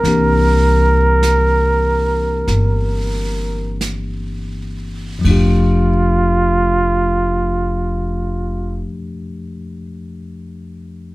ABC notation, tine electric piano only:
X:1
M:4/4
L:1/8
Q:"Swing" 1/4=40
K:F
V:1 name="Tine electric piano"
[E,B,CDG]8 | [F,,F,A,DG]8 |]